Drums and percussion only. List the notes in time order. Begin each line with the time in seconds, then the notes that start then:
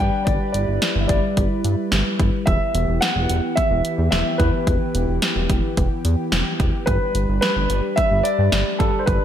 0.27 kick, closed hi-hat
0.54 closed hi-hat
0.82 snare, closed hi-hat
1.09 kick, closed hi-hat
1.37 kick, closed hi-hat
1.65 closed hi-hat
1.92 snare, closed hi-hat
2.20 kick, closed hi-hat
2.47 kick, closed hi-hat
2.75 closed hi-hat
3.02 snare, closed hi-hat
3.29 closed hi-hat
3.57 kick, closed hi-hat
3.85 closed hi-hat
4.12 snare, closed hi-hat
4.40 kick, closed hi-hat
4.67 kick, closed hi-hat
4.95 closed hi-hat
5.22 snare, closed hi-hat
5.50 kick, closed hi-hat
5.77 kick, closed hi-hat
6.05 closed hi-hat
6.32 snare, closed hi-hat
6.60 kick, closed hi-hat
6.87 kick, closed hi-hat
7.15 closed hi-hat
7.42 snare, closed hi-hat
7.70 closed hi-hat
7.98 kick, closed hi-hat
8.25 closed hi-hat
8.52 snare, closed hi-hat
8.80 kick, closed hi-hat
9.07 kick, closed hi-hat